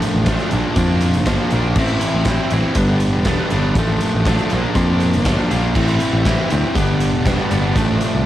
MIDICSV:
0, 0, Header, 1, 4, 480
1, 0, Start_track
1, 0, Tempo, 500000
1, 1692, Time_signature, 4, 2, 24, 8
1, 7928, End_track
2, 0, Start_track
2, 0, Title_t, "Distorted electric guitar"
2, 0, Program_c, 0, 30
2, 0, Note_on_c, 0, 53, 115
2, 0, Note_on_c, 0, 57, 112
2, 0, Note_on_c, 0, 62, 116
2, 254, Note_off_c, 0, 53, 0
2, 260, Note_off_c, 0, 57, 0
2, 265, Note_off_c, 0, 62, 0
2, 265, Note_on_c, 0, 53, 92
2, 272, Note_on_c, 0, 57, 76
2, 277, Note_on_c, 0, 62, 101
2, 485, Note_off_c, 0, 53, 0
2, 488, Note_off_c, 0, 57, 0
2, 490, Note_off_c, 0, 62, 0
2, 507, Note_on_c, 0, 53, 97
2, 514, Note_on_c, 0, 62, 105
2, 516, Note_on_c, 0, 58, 101
2, 735, Note_off_c, 0, 53, 0
2, 741, Note_off_c, 0, 58, 0
2, 747, Note_off_c, 0, 62, 0
2, 747, Note_on_c, 0, 53, 95
2, 753, Note_on_c, 0, 58, 96
2, 758, Note_on_c, 0, 62, 100
2, 1216, Note_off_c, 0, 58, 0
2, 1219, Note_off_c, 0, 53, 0
2, 1224, Note_off_c, 0, 62, 0
2, 1227, Note_on_c, 0, 58, 105
2, 1231, Note_on_c, 0, 53, 79
2, 1236, Note_on_c, 0, 62, 105
2, 1463, Note_off_c, 0, 53, 0
2, 1468, Note_off_c, 0, 58, 0
2, 1469, Note_off_c, 0, 62, 0
2, 1474, Note_on_c, 0, 53, 83
2, 1480, Note_on_c, 0, 58, 84
2, 1481, Note_on_c, 0, 62, 90
2, 1689, Note_off_c, 0, 53, 0
2, 1692, Note_off_c, 0, 58, 0
2, 1692, Note_off_c, 0, 62, 0
2, 1705, Note_on_c, 0, 52, 104
2, 1709, Note_on_c, 0, 60, 117
2, 1712, Note_on_c, 0, 64, 126
2, 2168, Note_off_c, 0, 52, 0
2, 2179, Note_off_c, 0, 64, 0
2, 2179, Note_on_c, 0, 52, 77
2, 2180, Note_off_c, 0, 60, 0
2, 2190, Note_on_c, 0, 64, 94
2, 2192, Note_on_c, 0, 60, 87
2, 2414, Note_off_c, 0, 52, 0
2, 2423, Note_off_c, 0, 64, 0
2, 2424, Note_off_c, 0, 60, 0
2, 2425, Note_on_c, 0, 52, 87
2, 2435, Note_on_c, 0, 64, 95
2, 2436, Note_on_c, 0, 60, 91
2, 2644, Note_off_c, 0, 52, 0
2, 2648, Note_off_c, 0, 64, 0
2, 2649, Note_off_c, 0, 60, 0
2, 2657, Note_on_c, 0, 55, 106
2, 2666, Note_on_c, 0, 59, 103
2, 2669, Note_on_c, 0, 62, 109
2, 3120, Note_off_c, 0, 55, 0
2, 3126, Note_off_c, 0, 62, 0
2, 3127, Note_off_c, 0, 59, 0
2, 3132, Note_on_c, 0, 55, 91
2, 3138, Note_on_c, 0, 62, 93
2, 3139, Note_on_c, 0, 59, 100
2, 3365, Note_off_c, 0, 55, 0
2, 3369, Note_off_c, 0, 59, 0
2, 3377, Note_on_c, 0, 55, 85
2, 3379, Note_off_c, 0, 62, 0
2, 3380, Note_on_c, 0, 59, 85
2, 3390, Note_on_c, 0, 62, 93
2, 3599, Note_off_c, 0, 55, 0
2, 3601, Note_off_c, 0, 59, 0
2, 3606, Note_off_c, 0, 62, 0
2, 3631, Note_on_c, 0, 53, 100
2, 3634, Note_on_c, 0, 57, 115
2, 3642, Note_on_c, 0, 62, 115
2, 4083, Note_off_c, 0, 53, 0
2, 4090, Note_off_c, 0, 62, 0
2, 4094, Note_off_c, 0, 57, 0
2, 4094, Note_on_c, 0, 53, 91
2, 4102, Note_on_c, 0, 62, 92
2, 4105, Note_on_c, 0, 57, 84
2, 4318, Note_off_c, 0, 53, 0
2, 4321, Note_off_c, 0, 62, 0
2, 4323, Note_off_c, 0, 57, 0
2, 4334, Note_on_c, 0, 53, 103
2, 4339, Note_on_c, 0, 58, 92
2, 4349, Note_on_c, 0, 62, 111
2, 4550, Note_off_c, 0, 53, 0
2, 4558, Note_off_c, 0, 58, 0
2, 4561, Note_off_c, 0, 62, 0
2, 4562, Note_on_c, 0, 53, 98
2, 4569, Note_on_c, 0, 58, 96
2, 4572, Note_on_c, 0, 62, 102
2, 5031, Note_off_c, 0, 53, 0
2, 5037, Note_off_c, 0, 58, 0
2, 5037, Note_off_c, 0, 62, 0
2, 5043, Note_on_c, 0, 53, 99
2, 5048, Note_on_c, 0, 58, 93
2, 5049, Note_on_c, 0, 62, 99
2, 5272, Note_off_c, 0, 53, 0
2, 5277, Note_off_c, 0, 58, 0
2, 5280, Note_off_c, 0, 62, 0
2, 5284, Note_on_c, 0, 53, 82
2, 5288, Note_on_c, 0, 58, 88
2, 5291, Note_on_c, 0, 62, 90
2, 5512, Note_off_c, 0, 53, 0
2, 5514, Note_off_c, 0, 58, 0
2, 5516, Note_off_c, 0, 62, 0
2, 5526, Note_on_c, 0, 52, 111
2, 5526, Note_on_c, 0, 60, 118
2, 5534, Note_on_c, 0, 64, 121
2, 6001, Note_off_c, 0, 52, 0
2, 6005, Note_off_c, 0, 60, 0
2, 6008, Note_off_c, 0, 64, 0
2, 6012, Note_on_c, 0, 52, 93
2, 6016, Note_on_c, 0, 60, 89
2, 6020, Note_on_c, 0, 64, 95
2, 6234, Note_off_c, 0, 52, 0
2, 6240, Note_off_c, 0, 60, 0
2, 6246, Note_off_c, 0, 64, 0
2, 6246, Note_on_c, 0, 52, 89
2, 6251, Note_on_c, 0, 60, 99
2, 6257, Note_on_c, 0, 64, 104
2, 6473, Note_off_c, 0, 52, 0
2, 6476, Note_off_c, 0, 60, 0
2, 6479, Note_off_c, 0, 64, 0
2, 6481, Note_on_c, 0, 55, 89
2, 6489, Note_on_c, 0, 59, 102
2, 6494, Note_on_c, 0, 62, 112
2, 6952, Note_off_c, 0, 55, 0
2, 6964, Note_off_c, 0, 59, 0
2, 6964, Note_on_c, 0, 55, 95
2, 6969, Note_off_c, 0, 62, 0
2, 6975, Note_on_c, 0, 59, 92
2, 6980, Note_on_c, 0, 62, 90
2, 7200, Note_off_c, 0, 55, 0
2, 7201, Note_off_c, 0, 59, 0
2, 7208, Note_off_c, 0, 62, 0
2, 7212, Note_on_c, 0, 55, 84
2, 7212, Note_on_c, 0, 59, 94
2, 7220, Note_on_c, 0, 62, 94
2, 7437, Note_off_c, 0, 55, 0
2, 7437, Note_off_c, 0, 59, 0
2, 7441, Note_off_c, 0, 62, 0
2, 7450, Note_on_c, 0, 53, 107
2, 7457, Note_on_c, 0, 57, 119
2, 7459, Note_on_c, 0, 62, 127
2, 7915, Note_off_c, 0, 53, 0
2, 7919, Note_off_c, 0, 62, 0
2, 7920, Note_off_c, 0, 57, 0
2, 7928, End_track
3, 0, Start_track
3, 0, Title_t, "Picked electric bass"
3, 0, Program_c, 1, 34
3, 140, Note_on_c, 1, 33, 76
3, 358, Note_off_c, 1, 33, 0
3, 508, Note_on_c, 1, 34, 99
3, 612, Note_off_c, 1, 34, 0
3, 728, Note_on_c, 1, 41, 110
3, 1108, Note_on_c, 1, 31, 95
3, 1122, Note_off_c, 1, 41, 0
3, 1322, Note_off_c, 1, 31, 0
3, 1464, Note_on_c, 1, 34, 100
3, 1680, Note_off_c, 1, 34, 0
3, 1688, Note_on_c, 1, 33, 95
3, 1911, Note_off_c, 1, 33, 0
3, 2058, Note_on_c, 1, 33, 74
3, 2276, Note_off_c, 1, 33, 0
3, 2420, Note_on_c, 1, 33, 101
3, 2527, Note_off_c, 1, 33, 0
3, 2645, Note_on_c, 1, 31, 121
3, 3025, Note_off_c, 1, 31, 0
3, 3025, Note_on_c, 1, 28, 111
3, 3240, Note_off_c, 1, 28, 0
3, 3383, Note_on_c, 1, 31, 93
3, 3598, Note_off_c, 1, 31, 0
3, 3603, Note_on_c, 1, 33, 90
3, 3828, Note_off_c, 1, 33, 0
3, 3985, Note_on_c, 1, 33, 82
3, 4199, Note_off_c, 1, 33, 0
3, 4346, Note_on_c, 1, 34, 96
3, 4449, Note_off_c, 1, 34, 0
3, 4565, Note_on_c, 1, 41, 124
3, 4934, Note_on_c, 1, 31, 101
3, 4948, Note_off_c, 1, 41, 0
3, 5153, Note_off_c, 1, 31, 0
3, 5293, Note_on_c, 1, 34, 91
3, 5513, Note_off_c, 1, 34, 0
3, 5524, Note_on_c, 1, 33, 93
3, 5748, Note_off_c, 1, 33, 0
3, 5887, Note_on_c, 1, 33, 83
3, 6110, Note_off_c, 1, 33, 0
3, 6264, Note_on_c, 1, 38, 97
3, 6368, Note_off_c, 1, 38, 0
3, 6486, Note_on_c, 1, 31, 111
3, 6849, Note_off_c, 1, 31, 0
3, 6849, Note_on_c, 1, 28, 108
3, 7071, Note_off_c, 1, 28, 0
3, 7214, Note_on_c, 1, 31, 101
3, 7434, Note_off_c, 1, 31, 0
3, 7447, Note_on_c, 1, 33, 92
3, 7670, Note_off_c, 1, 33, 0
3, 7821, Note_on_c, 1, 36, 81
3, 7928, Note_off_c, 1, 36, 0
3, 7928, End_track
4, 0, Start_track
4, 0, Title_t, "Drums"
4, 18, Note_on_c, 9, 42, 77
4, 114, Note_off_c, 9, 42, 0
4, 249, Note_on_c, 9, 42, 100
4, 253, Note_on_c, 9, 36, 118
4, 257, Note_on_c, 9, 38, 117
4, 345, Note_off_c, 9, 42, 0
4, 349, Note_off_c, 9, 36, 0
4, 353, Note_off_c, 9, 38, 0
4, 375, Note_on_c, 9, 42, 46
4, 471, Note_off_c, 9, 42, 0
4, 487, Note_on_c, 9, 42, 80
4, 583, Note_off_c, 9, 42, 0
4, 729, Note_on_c, 9, 42, 110
4, 732, Note_on_c, 9, 36, 108
4, 825, Note_off_c, 9, 42, 0
4, 828, Note_off_c, 9, 36, 0
4, 967, Note_on_c, 9, 42, 71
4, 1063, Note_off_c, 9, 42, 0
4, 1089, Note_on_c, 9, 42, 48
4, 1185, Note_off_c, 9, 42, 0
4, 1208, Note_on_c, 9, 42, 105
4, 1209, Note_on_c, 9, 36, 112
4, 1217, Note_on_c, 9, 38, 108
4, 1304, Note_off_c, 9, 42, 0
4, 1305, Note_off_c, 9, 36, 0
4, 1313, Note_off_c, 9, 38, 0
4, 1446, Note_on_c, 9, 42, 68
4, 1542, Note_off_c, 9, 42, 0
4, 1685, Note_on_c, 9, 49, 100
4, 1689, Note_on_c, 9, 36, 121
4, 1781, Note_off_c, 9, 49, 0
4, 1785, Note_off_c, 9, 36, 0
4, 1804, Note_on_c, 9, 42, 46
4, 1900, Note_off_c, 9, 42, 0
4, 1927, Note_on_c, 9, 42, 81
4, 2023, Note_off_c, 9, 42, 0
4, 2159, Note_on_c, 9, 42, 104
4, 2165, Note_on_c, 9, 36, 116
4, 2167, Note_on_c, 9, 38, 111
4, 2255, Note_off_c, 9, 42, 0
4, 2261, Note_off_c, 9, 36, 0
4, 2263, Note_off_c, 9, 38, 0
4, 2404, Note_on_c, 9, 42, 91
4, 2500, Note_off_c, 9, 42, 0
4, 2639, Note_on_c, 9, 42, 112
4, 2644, Note_on_c, 9, 36, 112
4, 2735, Note_off_c, 9, 42, 0
4, 2740, Note_off_c, 9, 36, 0
4, 2880, Note_on_c, 9, 42, 71
4, 2976, Note_off_c, 9, 42, 0
4, 3119, Note_on_c, 9, 42, 98
4, 3123, Note_on_c, 9, 36, 109
4, 3127, Note_on_c, 9, 38, 117
4, 3215, Note_off_c, 9, 42, 0
4, 3219, Note_off_c, 9, 36, 0
4, 3223, Note_off_c, 9, 38, 0
4, 3364, Note_on_c, 9, 42, 67
4, 3460, Note_off_c, 9, 42, 0
4, 3605, Note_on_c, 9, 36, 120
4, 3605, Note_on_c, 9, 42, 105
4, 3701, Note_off_c, 9, 36, 0
4, 3701, Note_off_c, 9, 42, 0
4, 3846, Note_on_c, 9, 42, 73
4, 3942, Note_off_c, 9, 42, 0
4, 4085, Note_on_c, 9, 36, 125
4, 4087, Note_on_c, 9, 42, 98
4, 4095, Note_on_c, 9, 38, 119
4, 4181, Note_off_c, 9, 36, 0
4, 4183, Note_off_c, 9, 42, 0
4, 4191, Note_off_c, 9, 38, 0
4, 4208, Note_on_c, 9, 42, 45
4, 4304, Note_off_c, 9, 42, 0
4, 4319, Note_on_c, 9, 42, 77
4, 4415, Note_off_c, 9, 42, 0
4, 4562, Note_on_c, 9, 36, 116
4, 4564, Note_on_c, 9, 42, 93
4, 4658, Note_off_c, 9, 36, 0
4, 4660, Note_off_c, 9, 42, 0
4, 4802, Note_on_c, 9, 42, 74
4, 4898, Note_off_c, 9, 42, 0
4, 4928, Note_on_c, 9, 42, 40
4, 5024, Note_off_c, 9, 42, 0
4, 5041, Note_on_c, 9, 42, 102
4, 5043, Note_on_c, 9, 36, 118
4, 5049, Note_on_c, 9, 38, 118
4, 5137, Note_off_c, 9, 42, 0
4, 5139, Note_off_c, 9, 36, 0
4, 5145, Note_off_c, 9, 38, 0
4, 5290, Note_on_c, 9, 42, 66
4, 5298, Note_on_c, 9, 38, 29
4, 5386, Note_off_c, 9, 42, 0
4, 5394, Note_off_c, 9, 38, 0
4, 5523, Note_on_c, 9, 36, 126
4, 5526, Note_on_c, 9, 57, 102
4, 5619, Note_off_c, 9, 36, 0
4, 5622, Note_off_c, 9, 57, 0
4, 5641, Note_on_c, 9, 42, 49
4, 5737, Note_off_c, 9, 42, 0
4, 5761, Note_on_c, 9, 42, 86
4, 5857, Note_off_c, 9, 42, 0
4, 6004, Note_on_c, 9, 36, 120
4, 6004, Note_on_c, 9, 42, 106
4, 6013, Note_on_c, 9, 38, 123
4, 6100, Note_off_c, 9, 36, 0
4, 6100, Note_off_c, 9, 42, 0
4, 6109, Note_off_c, 9, 38, 0
4, 6243, Note_on_c, 9, 42, 87
4, 6339, Note_off_c, 9, 42, 0
4, 6484, Note_on_c, 9, 36, 122
4, 6484, Note_on_c, 9, 42, 108
4, 6580, Note_off_c, 9, 36, 0
4, 6580, Note_off_c, 9, 42, 0
4, 6723, Note_on_c, 9, 42, 78
4, 6819, Note_off_c, 9, 42, 0
4, 6966, Note_on_c, 9, 36, 119
4, 6967, Note_on_c, 9, 42, 103
4, 6976, Note_on_c, 9, 38, 118
4, 7062, Note_off_c, 9, 36, 0
4, 7063, Note_off_c, 9, 42, 0
4, 7072, Note_off_c, 9, 38, 0
4, 7208, Note_on_c, 9, 42, 67
4, 7304, Note_off_c, 9, 42, 0
4, 7447, Note_on_c, 9, 36, 118
4, 7452, Note_on_c, 9, 42, 98
4, 7543, Note_off_c, 9, 36, 0
4, 7548, Note_off_c, 9, 42, 0
4, 7686, Note_on_c, 9, 42, 78
4, 7782, Note_off_c, 9, 42, 0
4, 7928, End_track
0, 0, End_of_file